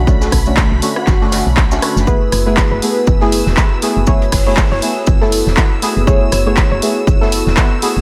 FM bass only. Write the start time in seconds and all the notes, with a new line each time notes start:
Already playing: B1
0.32 B1
0.71 B1
1.07 F#1
1.46 B1
1.96 F#1
2.32 F#1
2.71 F#1
3.07 F#1
3.46 E1
3.96 F#1
4.32 F#1
4.71 F#1
5.07 F#1
5.46 E1
5.96 F#1
6.32 F#1
6.71 F#1
7.07 F#1
7.46 E1
7.96 F#1